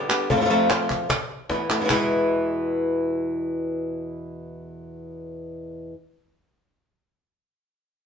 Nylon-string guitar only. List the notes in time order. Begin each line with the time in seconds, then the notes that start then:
0.09 D3 G3 B3 G4
0.30 F2 C3 F3 A3 C4 F4
0.36 C3 F3 A3 C4 F4
0.40 C3 F3 A3 C4 F4
0.45 C3 F3 A3 C4 F4
0.50 F2 C3 F3 A3 C4 F4
0.70 F3 A3 C4 F4
1.09 muted nylon-string guitar stroke
1.49 E3 A3 B3 E4
1.70 E3 A3 B3 E4
1.80 B2 E3 G#3 B3 E4
1.85 B2 E3 G#3 B3 E4
1.89 E2 B2 E3 G#3 B3 E4